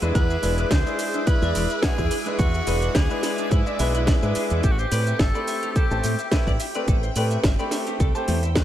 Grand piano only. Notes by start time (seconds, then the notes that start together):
0.01 G#3 D4 E4 B4
0.42 G#3 D4 E4 B4
0.86 G#3 D4 E4 G#4
1.41 G#3 D4 E4 D5
1.82 G#3 D4 E4 B4
2.26 G#3 D4 E4 B4
2.67 G#3 D4 E4 B4
3.10 G#3 D4 E4 B4
3.66 G#3 D4 E4 D5
3.79 G#3 D4 E4 B4
4.22 G#3 D4 E4 B4
4.91 A3 C4 G4 B4
5.34 A3 C4 G4 B5
5.91 A3 C4 G4 C5
6.31 A3 C4 G4 B4
6.75 A3 C4 G4 B4
7.16 A3 C4 G4 B4
7.59 A3 C4 G4 B5
8.15 A3 C4 G4 C5
8.55 A3 C4 G4 B4